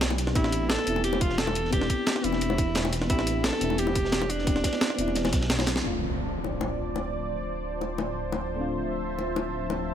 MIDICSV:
0, 0, Header, 1, 7, 480
1, 0, Start_track
1, 0, Tempo, 342857
1, 498, Time_signature, 4, 2, 24, 8
1, 13916, End_track
2, 0, Start_track
2, 0, Title_t, "Analog synth pad"
2, 0, Program_c, 0, 89
2, 8182, Note_on_c, 0, 53, 82
2, 8182, Note_on_c, 0, 72, 76
2, 8182, Note_on_c, 0, 74, 74
2, 8182, Note_on_c, 0, 81, 89
2, 11981, Note_off_c, 0, 74, 0
2, 12018, Note_on_c, 0, 76, 76
2, 13916, Note_off_c, 0, 53, 0
2, 13916, Note_off_c, 0, 72, 0
2, 13916, Note_off_c, 0, 76, 0
2, 13916, Note_off_c, 0, 81, 0
2, 13916, End_track
3, 0, Start_track
3, 0, Title_t, "Alto saxophone"
3, 0, Program_c, 1, 65
3, 497, Note_on_c, 1, 64, 101
3, 977, Note_on_c, 1, 69, 110
3, 998, Note_off_c, 1, 64, 0
3, 1449, Note_off_c, 1, 69, 0
3, 1458, Note_on_c, 1, 67, 99
3, 1697, Note_on_c, 1, 65, 98
3, 1718, Note_off_c, 1, 67, 0
3, 1936, Note_on_c, 1, 69, 110
3, 1957, Note_off_c, 1, 65, 0
3, 2407, Note_off_c, 1, 69, 0
3, 2415, Note_on_c, 1, 67, 108
3, 3140, Note_on_c, 1, 64, 105
3, 3161, Note_off_c, 1, 67, 0
3, 4099, Note_off_c, 1, 64, 0
3, 4339, Note_on_c, 1, 64, 97
3, 4819, Note_on_c, 1, 69, 105
3, 4840, Note_off_c, 1, 64, 0
3, 5303, Note_on_c, 1, 67, 103
3, 5324, Note_off_c, 1, 69, 0
3, 6020, Note_on_c, 1, 62, 87
3, 6041, Note_off_c, 1, 67, 0
3, 7699, Note_off_c, 1, 62, 0
3, 13916, End_track
4, 0, Start_track
4, 0, Title_t, "FM electric piano"
4, 0, Program_c, 2, 5
4, 0, Control_c, 2, 64, 127
4, 0, Note_on_c, 2, 59, 83
4, 0, Note_on_c, 2, 62, 73
4, 0, Note_on_c, 2, 64, 74
4, 0, Note_on_c, 2, 67, 88
4, 443, Note_off_c, 2, 59, 0
4, 460, Note_on_c, 2, 59, 83
4, 464, Note_off_c, 2, 62, 0
4, 476, Note_off_c, 2, 64, 0
4, 486, Note_on_c, 2, 60, 75
4, 489, Note_off_c, 2, 67, 0
4, 510, Note_on_c, 2, 62, 76
4, 518, Control_c, 2, 64, 0
4, 535, Note_on_c, 2, 67, 91
4, 731, Control_c, 2, 64, 127
4, 1164, Note_off_c, 2, 59, 0
4, 1181, Note_on_c, 2, 59, 80
4, 1184, Note_off_c, 2, 60, 0
4, 1196, Note_off_c, 2, 62, 0
4, 1207, Note_on_c, 2, 60, 72
4, 1208, Note_off_c, 2, 67, 0
4, 1231, Note_on_c, 2, 62, 73
4, 1256, Note_on_c, 2, 64, 92
4, 2364, Note_off_c, 2, 59, 0
4, 2381, Note_on_c, 2, 59, 83
4, 2384, Note_off_c, 2, 60, 0
4, 2397, Note_off_c, 2, 62, 0
4, 2405, Note_on_c, 2, 60, 77
4, 2409, Note_off_c, 2, 64, 0
4, 2430, Note_on_c, 2, 62, 77
4, 2455, Note_on_c, 2, 67, 92
4, 3082, Note_off_c, 2, 59, 0
4, 3099, Note_on_c, 2, 59, 83
4, 3104, Note_off_c, 2, 60, 0
4, 3116, Note_off_c, 2, 62, 0
4, 3124, Note_on_c, 2, 60, 75
4, 3128, Note_off_c, 2, 67, 0
4, 3149, Note_on_c, 2, 62, 76
4, 3174, Note_on_c, 2, 64, 91
4, 4284, Note_off_c, 2, 59, 0
4, 4301, Note_on_c, 2, 59, 84
4, 4303, Note_off_c, 2, 60, 0
4, 4316, Note_off_c, 2, 62, 0
4, 4325, Note_on_c, 2, 60, 77
4, 4328, Note_off_c, 2, 64, 0
4, 4351, Note_on_c, 2, 62, 78
4, 4375, Note_on_c, 2, 67, 98
4, 5002, Note_off_c, 2, 59, 0
4, 5019, Note_on_c, 2, 59, 84
4, 5024, Note_off_c, 2, 60, 0
4, 5036, Note_off_c, 2, 62, 0
4, 5044, Note_on_c, 2, 60, 77
4, 5049, Note_off_c, 2, 67, 0
4, 5069, Note_on_c, 2, 62, 76
4, 5094, Note_on_c, 2, 64, 91
4, 6205, Note_off_c, 2, 59, 0
4, 6221, Note_on_c, 2, 59, 85
4, 6223, Note_off_c, 2, 60, 0
4, 6236, Note_off_c, 2, 62, 0
4, 6247, Note_on_c, 2, 60, 80
4, 6248, Note_off_c, 2, 64, 0
4, 6271, Note_on_c, 2, 62, 76
4, 6296, Note_on_c, 2, 67, 93
4, 6922, Note_off_c, 2, 59, 0
4, 6939, Note_on_c, 2, 59, 86
4, 6945, Note_off_c, 2, 60, 0
4, 6957, Note_off_c, 2, 62, 0
4, 6964, Note_on_c, 2, 60, 77
4, 6969, Note_off_c, 2, 67, 0
4, 6989, Note_on_c, 2, 62, 76
4, 7013, Note_on_c, 2, 64, 93
4, 8131, Note_off_c, 2, 59, 0
4, 8139, Note_on_c, 2, 57, 74
4, 8143, Note_off_c, 2, 60, 0
4, 8156, Note_off_c, 2, 62, 0
4, 8165, Note_on_c, 2, 60, 65
4, 8168, Note_off_c, 2, 64, 0
4, 8189, Note_on_c, 2, 62, 66
4, 8192, Control_c, 2, 64, 0
4, 8214, Note_on_c, 2, 65, 79
4, 8472, Control_c, 2, 64, 127
4, 11963, Note_off_c, 2, 57, 0
4, 11980, Note_on_c, 2, 57, 74
4, 11983, Note_off_c, 2, 60, 0
4, 11995, Note_off_c, 2, 62, 0
4, 12005, Note_on_c, 2, 60, 67
4, 12008, Note_off_c, 2, 65, 0
4, 12029, Note_on_c, 2, 62, 69
4, 12055, Note_on_c, 2, 65, 82
4, 13916, Note_off_c, 2, 57, 0
4, 13916, Note_off_c, 2, 60, 0
4, 13916, Note_off_c, 2, 62, 0
4, 13916, Note_off_c, 2, 65, 0
4, 13916, End_track
5, 0, Start_track
5, 0, Title_t, "Detuned saw bass"
5, 0, Program_c, 3, 39
5, 0, Note_on_c, 3, 35, 94
5, 480, Note_off_c, 3, 35, 0
5, 497, Note_on_c, 3, 33, 98
5, 1082, Note_off_c, 3, 33, 0
5, 1219, Note_on_c, 3, 28, 91
5, 2640, Note_off_c, 3, 28, 0
5, 3139, Note_on_c, 3, 28, 99
5, 4320, Note_off_c, 3, 28, 0
5, 4338, Note_on_c, 3, 33, 98
5, 4922, Note_off_c, 3, 33, 0
5, 5059, Note_on_c, 3, 28, 93
5, 6480, Note_off_c, 3, 28, 0
5, 6977, Note_on_c, 3, 28, 98
5, 7449, Note_off_c, 3, 28, 0
5, 7458, Note_on_c, 3, 35, 84
5, 8159, Note_off_c, 3, 35, 0
5, 8177, Note_on_c, 3, 26, 84
5, 13916, Note_off_c, 3, 26, 0
5, 13916, End_track
6, 0, Start_track
6, 0, Title_t, "Impact"
6, 0, Program_c, 4, 103
6, 8179, Note_on_c, 4, 60, 65
6, 10098, Note_off_c, 4, 60, 0
6, 13916, End_track
7, 0, Start_track
7, 0, Title_t, "Drums"
7, 15, Note_on_c, 9, 51, 84
7, 16, Note_on_c, 9, 38, 103
7, 17, Note_off_c, 9, 38, 0
7, 17, Note_on_c, 9, 38, 114
7, 17, Note_on_c, 9, 42, 71
7, 140, Note_off_c, 9, 51, 0
7, 140, Note_on_c, 9, 51, 46
7, 147, Note_on_c, 9, 60, 81
7, 157, Note_off_c, 9, 38, 0
7, 157, Note_off_c, 9, 42, 0
7, 257, Note_on_c, 9, 42, 84
7, 260, Note_off_c, 9, 51, 0
7, 260, Note_on_c, 9, 51, 63
7, 269, Note_on_c, 9, 38, 41
7, 287, Note_off_c, 9, 60, 0
7, 380, Note_on_c, 9, 40, 52
7, 381, Note_off_c, 9, 38, 0
7, 381, Note_on_c, 9, 38, 36
7, 397, Note_off_c, 9, 42, 0
7, 400, Note_off_c, 9, 51, 0
7, 496, Note_on_c, 9, 42, 71
7, 497, Note_on_c, 9, 36, 118
7, 504, Note_on_c, 9, 51, 88
7, 520, Note_off_c, 9, 40, 0
7, 521, Note_off_c, 9, 38, 0
7, 616, Note_on_c, 9, 38, 47
7, 620, Note_on_c, 9, 40, 45
7, 636, Note_off_c, 9, 42, 0
7, 637, Note_off_c, 9, 36, 0
7, 644, Note_off_c, 9, 51, 0
7, 735, Note_on_c, 9, 42, 83
7, 737, Note_on_c, 9, 51, 72
7, 756, Note_off_c, 9, 38, 0
7, 760, Note_off_c, 9, 40, 0
7, 875, Note_off_c, 9, 42, 0
7, 877, Note_off_c, 9, 51, 0
7, 972, Note_on_c, 9, 51, 81
7, 975, Note_on_c, 9, 38, 119
7, 975, Note_on_c, 9, 42, 77
7, 981, Note_off_c, 9, 38, 0
7, 981, Note_on_c, 9, 38, 115
7, 1098, Note_off_c, 9, 38, 0
7, 1098, Note_on_c, 9, 38, 54
7, 1099, Note_on_c, 9, 40, 44
7, 1112, Note_off_c, 9, 51, 0
7, 1115, Note_off_c, 9, 42, 0
7, 1216, Note_on_c, 9, 42, 87
7, 1224, Note_on_c, 9, 51, 68
7, 1238, Note_off_c, 9, 38, 0
7, 1239, Note_off_c, 9, 40, 0
7, 1346, Note_on_c, 9, 60, 68
7, 1356, Note_off_c, 9, 42, 0
7, 1364, Note_off_c, 9, 51, 0
7, 1452, Note_on_c, 9, 51, 84
7, 1455, Note_on_c, 9, 42, 72
7, 1486, Note_off_c, 9, 60, 0
7, 1579, Note_on_c, 9, 60, 94
7, 1592, Note_off_c, 9, 51, 0
7, 1595, Note_off_c, 9, 42, 0
7, 1694, Note_on_c, 9, 51, 68
7, 1695, Note_on_c, 9, 42, 83
7, 1697, Note_on_c, 9, 36, 101
7, 1719, Note_off_c, 9, 60, 0
7, 1815, Note_on_c, 9, 38, 50
7, 1834, Note_off_c, 9, 51, 0
7, 1835, Note_off_c, 9, 42, 0
7, 1837, Note_off_c, 9, 36, 0
7, 1932, Note_off_c, 9, 38, 0
7, 1932, Note_on_c, 9, 38, 104
7, 1935, Note_off_c, 9, 38, 0
7, 1935, Note_on_c, 9, 38, 109
7, 1935, Note_on_c, 9, 42, 71
7, 1935, Note_on_c, 9, 51, 78
7, 2060, Note_on_c, 9, 40, 43
7, 2063, Note_on_c, 9, 60, 86
7, 2075, Note_off_c, 9, 38, 0
7, 2075, Note_off_c, 9, 42, 0
7, 2075, Note_off_c, 9, 51, 0
7, 2175, Note_on_c, 9, 42, 86
7, 2184, Note_on_c, 9, 51, 68
7, 2200, Note_off_c, 9, 40, 0
7, 2203, Note_off_c, 9, 60, 0
7, 2311, Note_on_c, 9, 38, 39
7, 2315, Note_off_c, 9, 42, 0
7, 2324, Note_off_c, 9, 51, 0
7, 2416, Note_on_c, 9, 42, 74
7, 2416, Note_on_c, 9, 51, 89
7, 2417, Note_on_c, 9, 36, 108
7, 2451, Note_off_c, 9, 38, 0
7, 2540, Note_on_c, 9, 40, 45
7, 2546, Note_on_c, 9, 38, 43
7, 2556, Note_off_c, 9, 42, 0
7, 2556, Note_off_c, 9, 51, 0
7, 2557, Note_off_c, 9, 36, 0
7, 2657, Note_on_c, 9, 36, 58
7, 2657, Note_on_c, 9, 42, 87
7, 2657, Note_on_c, 9, 51, 70
7, 2680, Note_off_c, 9, 40, 0
7, 2686, Note_off_c, 9, 38, 0
7, 2797, Note_off_c, 9, 36, 0
7, 2797, Note_off_c, 9, 42, 0
7, 2797, Note_off_c, 9, 51, 0
7, 2891, Note_on_c, 9, 51, 94
7, 2896, Note_on_c, 9, 38, 116
7, 2897, Note_off_c, 9, 38, 0
7, 2897, Note_on_c, 9, 38, 115
7, 2897, Note_on_c, 9, 42, 79
7, 3022, Note_on_c, 9, 40, 44
7, 3030, Note_off_c, 9, 38, 0
7, 3030, Note_on_c, 9, 38, 35
7, 3031, Note_off_c, 9, 51, 0
7, 3037, Note_off_c, 9, 42, 0
7, 3134, Note_on_c, 9, 51, 63
7, 3137, Note_on_c, 9, 42, 89
7, 3162, Note_off_c, 9, 40, 0
7, 3170, Note_off_c, 9, 38, 0
7, 3255, Note_on_c, 9, 60, 61
7, 3261, Note_on_c, 9, 38, 41
7, 3274, Note_off_c, 9, 51, 0
7, 3277, Note_off_c, 9, 42, 0
7, 3378, Note_on_c, 9, 42, 76
7, 3382, Note_on_c, 9, 51, 82
7, 3395, Note_off_c, 9, 60, 0
7, 3401, Note_off_c, 9, 38, 0
7, 3498, Note_on_c, 9, 60, 82
7, 3518, Note_off_c, 9, 42, 0
7, 3522, Note_off_c, 9, 51, 0
7, 3617, Note_on_c, 9, 36, 98
7, 3617, Note_on_c, 9, 42, 87
7, 3624, Note_on_c, 9, 51, 67
7, 3638, Note_off_c, 9, 60, 0
7, 3757, Note_off_c, 9, 36, 0
7, 3757, Note_off_c, 9, 42, 0
7, 3764, Note_off_c, 9, 51, 0
7, 3848, Note_on_c, 9, 51, 93
7, 3858, Note_on_c, 9, 38, 107
7, 3858, Note_on_c, 9, 42, 73
7, 3863, Note_off_c, 9, 38, 0
7, 3863, Note_on_c, 9, 38, 121
7, 3985, Note_on_c, 9, 60, 80
7, 3986, Note_off_c, 9, 51, 0
7, 3986, Note_on_c, 9, 51, 44
7, 3998, Note_off_c, 9, 42, 0
7, 4003, Note_off_c, 9, 38, 0
7, 4091, Note_on_c, 9, 38, 46
7, 4093, Note_off_c, 9, 51, 0
7, 4093, Note_on_c, 9, 51, 62
7, 4097, Note_on_c, 9, 42, 88
7, 4125, Note_off_c, 9, 60, 0
7, 4218, Note_off_c, 9, 38, 0
7, 4218, Note_on_c, 9, 38, 38
7, 4221, Note_on_c, 9, 40, 49
7, 4233, Note_off_c, 9, 51, 0
7, 4237, Note_off_c, 9, 42, 0
7, 4336, Note_on_c, 9, 51, 83
7, 4337, Note_on_c, 9, 42, 80
7, 4338, Note_on_c, 9, 36, 110
7, 4358, Note_off_c, 9, 38, 0
7, 4361, Note_off_c, 9, 40, 0
7, 4462, Note_on_c, 9, 40, 47
7, 4466, Note_on_c, 9, 38, 49
7, 4476, Note_off_c, 9, 51, 0
7, 4477, Note_off_c, 9, 42, 0
7, 4478, Note_off_c, 9, 36, 0
7, 4575, Note_on_c, 9, 51, 62
7, 4576, Note_on_c, 9, 42, 94
7, 4602, Note_off_c, 9, 40, 0
7, 4606, Note_off_c, 9, 38, 0
7, 4715, Note_off_c, 9, 51, 0
7, 4716, Note_off_c, 9, 42, 0
7, 4816, Note_on_c, 9, 38, 113
7, 4816, Note_on_c, 9, 42, 83
7, 4820, Note_off_c, 9, 38, 0
7, 4820, Note_on_c, 9, 38, 106
7, 4821, Note_on_c, 9, 51, 88
7, 4940, Note_on_c, 9, 40, 44
7, 4941, Note_off_c, 9, 38, 0
7, 4941, Note_on_c, 9, 38, 55
7, 4956, Note_off_c, 9, 42, 0
7, 4961, Note_off_c, 9, 51, 0
7, 5056, Note_on_c, 9, 42, 96
7, 5057, Note_on_c, 9, 51, 71
7, 5080, Note_off_c, 9, 40, 0
7, 5081, Note_off_c, 9, 38, 0
7, 5181, Note_on_c, 9, 60, 66
7, 5196, Note_off_c, 9, 42, 0
7, 5197, Note_off_c, 9, 51, 0
7, 5296, Note_on_c, 9, 42, 78
7, 5303, Note_on_c, 9, 51, 90
7, 5321, Note_off_c, 9, 60, 0
7, 5416, Note_on_c, 9, 60, 85
7, 5436, Note_off_c, 9, 42, 0
7, 5443, Note_off_c, 9, 51, 0
7, 5536, Note_on_c, 9, 42, 92
7, 5536, Note_on_c, 9, 51, 65
7, 5538, Note_on_c, 9, 36, 98
7, 5556, Note_off_c, 9, 60, 0
7, 5671, Note_on_c, 9, 38, 58
7, 5676, Note_off_c, 9, 42, 0
7, 5676, Note_off_c, 9, 51, 0
7, 5678, Note_off_c, 9, 36, 0
7, 5769, Note_off_c, 9, 38, 0
7, 5769, Note_on_c, 9, 38, 120
7, 5769, Note_on_c, 9, 51, 83
7, 5777, Note_off_c, 9, 38, 0
7, 5777, Note_on_c, 9, 38, 106
7, 5777, Note_on_c, 9, 42, 77
7, 5902, Note_on_c, 9, 40, 45
7, 5902, Note_on_c, 9, 60, 79
7, 5909, Note_off_c, 9, 51, 0
7, 5917, Note_off_c, 9, 38, 0
7, 5917, Note_off_c, 9, 42, 0
7, 6012, Note_on_c, 9, 51, 65
7, 6017, Note_on_c, 9, 42, 93
7, 6042, Note_off_c, 9, 40, 0
7, 6042, Note_off_c, 9, 60, 0
7, 6141, Note_on_c, 9, 38, 46
7, 6152, Note_off_c, 9, 51, 0
7, 6157, Note_off_c, 9, 42, 0
7, 6257, Note_on_c, 9, 51, 83
7, 6258, Note_on_c, 9, 36, 115
7, 6258, Note_on_c, 9, 42, 83
7, 6281, Note_off_c, 9, 38, 0
7, 6378, Note_on_c, 9, 38, 40
7, 6381, Note_on_c, 9, 40, 48
7, 6397, Note_off_c, 9, 51, 0
7, 6398, Note_off_c, 9, 36, 0
7, 6398, Note_off_c, 9, 42, 0
7, 6492, Note_off_c, 9, 38, 0
7, 6492, Note_on_c, 9, 38, 97
7, 6498, Note_on_c, 9, 36, 57
7, 6498, Note_on_c, 9, 42, 98
7, 6498, Note_on_c, 9, 51, 71
7, 6521, Note_off_c, 9, 40, 0
7, 6616, Note_off_c, 9, 51, 0
7, 6616, Note_on_c, 9, 51, 73
7, 6620, Note_off_c, 9, 38, 0
7, 6620, Note_on_c, 9, 38, 97
7, 6638, Note_off_c, 9, 36, 0
7, 6638, Note_off_c, 9, 42, 0
7, 6735, Note_off_c, 9, 51, 0
7, 6735, Note_on_c, 9, 51, 89
7, 6738, Note_off_c, 9, 38, 0
7, 6738, Note_on_c, 9, 38, 119
7, 6738, Note_on_c, 9, 42, 86
7, 6739, Note_off_c, 9, 38, 0
7, 6739, Note_on_c, 9, 38, 121
7, 6862, Note_on_c, 9, 40, 46
7, 6863, Note_off_c, 9, 38, 0
7, 6863, Note_on_c, 9, 38, 35
7, 6875, Note_off_c, 9, 51, 0
7, 6878, Note_off_c, 9, 42, 0
7, 6979, Note_on_c, 9, 42, 98
7, 7002, Note_off_c, 9, 40, 0
7, 7003, Note_off_c, 9, 38, 0
7, 7107, Note_on_c, 9, 60, 61
7, 7119, Note_off_c, 9, 42, 0
7, 7213, Note_on_c, 9, 38, 94
7, 7217, Note_on_c, 9, 42, 81
7, 7226, Note_on_c, 9, 51, 71
7, 7247, Note_off_c, 9, 60, 0
7, 7345, Note_off_c, 9, 38, 0
7, 7345, Note_on_c, 9, 38, 107
7, 7347, Note_on_c, 9, 60, 79
7, 7350, Note_off_c, 9, 51, 0
7, 7350, Note_on_c, 9, 51, 73
7, 7357, Note_off_c, 9, 42, 0
7, 7454, Note_off_c, 9, 51, 0
7, 7454, Note_on_c, 9, 51, 75
7, 7457, Note_off_c, 9, 38, 0
7, 7457, Note_on_c, 9, 38, 113
7, 7458, Note_on_c, 9, 36, 97
7, 7458, Note_on_c, 9, 42, 99
7, 7487, Note_off_c, 9, 60, 0
7, 7589, Note_off_c, 9, 38, 0
7, 7589, Note_on_c, 9, 38, 93
7, 7593, Note_off_c, 9, 51, 0
7, 7593, Note_on_c, 9, 51, 72
7, 7598, Note_off_c, 9, 36, 0
7, 7598, Note_off_c, 9, 42, 0
7, 7696, Note_off_c, 9, 38, 0
7, 7696, Note_on_c, 9, 38, 108
7, 7698, Note_off_c, 9, 38, 0
7, 7698, Note_on_c, 9, 38, 110
7, 7698, Note_on_c, 9, 42, 81
7, 7699, Note_off_c, 9, 51, 0
7, 7699, Note_on_c, 9, 51, 85
7, 7822, Note_off_c, 9, 38, 0
7, 7822, Note_on_c, 9, 38, 52
7, 7827, Note_on_c, 9, 60, 79
7, 7834, Note_off_c, 9, 38, 0
7, 7834, Note_on_c, 9, 38, 102
7, 7835, Note_off_c, 9, 51, 0
7, 7835, Note_on_c, 9, 51, 82
7, 7838, Note_off_c, 9, 42, 0
7, 7928, Note_off_c, 9, 51, 0
7, 7928, Note_on_c, 9, 51, 57
7, 7938, Note_off_c, 9, 38, 0
7, 7938, Note_on_c, 9, 38, 76
7, 7938, Note_on_c, 9, 42, 95
7, 7967, Note_off_c, 9, 60, 0
7, 8061, Note_off_c, 9, 38, 0
7, 8061, Note_on_c, 9, 38, 74
7, 8068, Note_off_c, 9, 51, 0
7, 8078, Note_off_c, 9, 42, 0
7, 8201, Note_off_c, 9, 38, 0
7, 9021, Note_on_c, 9, 60, 54
7, 9161, Note_off_c, 9, 60, 0
7, 9252, Note_on_c, 9, 60, 84
7, 9392, Note_off_c, 9, 60, 0
7, 9740, Note_on_c, 9, 60, 77
7, 9880, Note_off_c, 9, 60, 0
7, 10940, Note_on_c, 9, 60, 59
7, 11080, Note_off_c, 9, 60, 0
7, 11177, Note_on_c, 9, 60, 85
7, 11317, Note_off_c, 9, 60, 0
7, 11654, Note_on_c, 9, 60, 79
7, 11794, Note_off_c, 9, 60, 0
7, 12861, Note_on_c, 9, 60, 57
7, 13001, Note_off_c, 9, 60, 0
7, 13108, Note_on_c, 9, 60, 90
7, 13248, Note_off_c, 9, 60, 0
7, 13580, Note_on_c, 9, 60, 82
7, 13720, Note_off_c, 9, 60, 0
7, 13916, End_track
0, 0, End_of_file